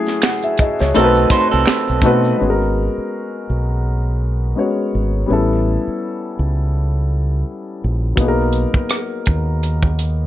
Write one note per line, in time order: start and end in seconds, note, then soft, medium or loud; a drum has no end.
0.00 0.65 F#3 medium
0.00 0.65 A3 medium
0.00 0.66 C#4 medium
0.00 0.66 E4 medium
0.00 0.67 G#4 medium
0.06 snare soft
0.06 shaker soft
0.22 0.42 F#5 medium
0.22 finger snap medium
0.22 snare loud
0.22 closed hi-hat medium
0.22 shaker medium
0.24 finger snap medium
0.42 0.58 E5 medium
0.42 closed hi-hat soft
0.42 shaker soft
0.58 0.79 D#5 medium
0.58 muted fingered electric bass stroke soft
0.58 kick medium
0.58 closed hi-hat medium
0.79 0.93 C#2 medium
0.79 1.14 C#5 medium
0.79 snare soft
0.79 shaker soft
0.94 1.26 B1 loud
0.94 1.83 A3 medium
0.94 1.84 C4 medium
0.94 1.30 C4 medium
0.94 1.84 D#4 medium
0.94 1.85 F#4 medium
0.94 1.30 A4 medium
0.94 1.03 A#4 medium
0.94 closed hi-hat medium
0.94 shaker medium
1.04 1.88 B4 medium
1.15 shaker soft
1.30 1.51 D#4 medium
1.30 1.51 C5 medium
1.30 muted fingered electric bass stroke soft
1.30 kick medium
1.30 snare soft
1.30 closed hi-hat medium
1.51 1.65 C2 medium
1.51 2.36 C4 medium
1.51 2.35 A4 medium
1.51 shaker soft
1.66 finger snap medium
1.66 snare loud
1.66 closed hi-hat medium
1.66 shaker medium
1.68 finger snap medium
1.88 2.02 B1 medium
1.88 shaker soft
2.02 2.33 B2 medium
2.02 2.33 A3 medium
2.02 2.33 C4 medium
2.02 2.33 D#4 medium
2.02 2.34 F#4 medium
2.02 kick medium
2.02 closed hi-hat soft
2.06 2.34 B4 medium
2.24 shaker soft
2.37 4.51 G#3 medium
2.37 4.52 B3 medium
2.37 4.53 C#4 medium
2.41 2.87 G#1 medium
2.41 4.53 F#4 medium
2.41 2.49 G#4 soft
2.50 4.57 A#4 medium
2.98 muted fingered electric bass stroke soft
3.50 4.53 B1 medium
4.56 5.28 G#3 soft
4.56 5.26 B3 soft
4.56 5.28 C#4 soft
4.56 5.29 F#4 soft
4.56 5.30 C#5 medium
4.95 5.24 G#1 medium
5.26 5.76 A1 medium
5.26 8.13 G3 medium
5.26 8.13 B3 medium
5.26 8.14 C#4 medium
5.31 8.15 E4 medium
5.31 8.16 A4 medium
5.88 muted fingered electric bass stroke soft
6.39 7.42 C#2 medium
7.84 8.13 A#1 medium
8.16 8.65 B1 medium
8.16 10.27 F#3 medium
8.16 10.27 A#3 medium
8.16 10.27 B3 medium
8.16 kick medium
8.16 closed hi-hat medium
8.20 10.27 D#4 medium
8.20 8.27 G#4 medium
8.28 10.27 A#4 medium
8.53 closed hi-hat soft
8.74 muted fingered electric bass stroke soft
8.74 kick medium
8.89 cross-stick loud
8.89 closed hi-hat medium
9.26 10.27 D#2 medium
9.26 kick medium
9.26 closed hi-hat medium
9.63 closed hi-hat medium
9.83 kick medium
9.99 closed hi-hat medium